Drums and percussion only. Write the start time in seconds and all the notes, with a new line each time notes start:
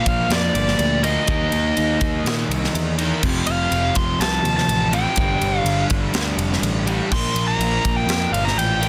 0.06 kick, ride
0.30 snare, ride
0.55 ride
0.68 snare
0.79 ride
1.04 ride
1.27 kick, ride
1.52 ride
1.77 ride
2.01 kick, ride
2.26 snare, ride
2.51 ride
2.64 snare
2.75 ride
2.99 ride
3.23 kick, crash
3.47 ride
3.72 ride
3.95 kick, ride
4.21 snare, ride
4.45 ride
4.58 snare
4.69 ride
4.93 ride
5.16 kick, ride
5.42 ride
5.66 ride
5.90 kick, ride
6.14 snare, ride
6.39 ride
6.53 snare
6.63 ride
6.87 ride
7.12 kick, crash
7.36 ride
7.61 ride
7.85 kick, ride
8.09 snare, ride
8.34 ride
8.47 snare
8.59 ride
8.83 ride